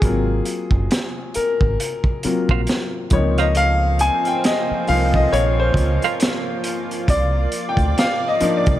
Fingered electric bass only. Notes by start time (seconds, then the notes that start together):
0.03 G#1
0.71 F#1
1.37 muted fingered electric bass stroke
1.61 G#1
2.25 muted fingered electric bass stroke
2.50 A#1
3.12 C#2
4.71 muted fingered electric bass stroke
4.89 C2
5.33 A#1
5.74 C#2
7.09 C2
7.77 D2
8.42 muted fingered electric bass stroke
8.68 C2